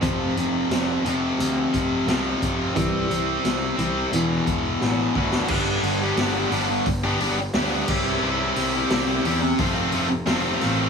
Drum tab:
CC |----------------|----------------|x-------------x-|----------------|
HH |x-x-x-x-x-x-x-x-|x-x-x-x-x-x-----|--o-o-o-o-o-o---|--o-o-o-o-o-o-o-|
SD |----o-------o---|----o-------o--o|----o-------o---|----o-------o-o-|
BD |o---------o---o-|o---------o---o-|o-------o-----o-|--------o-------|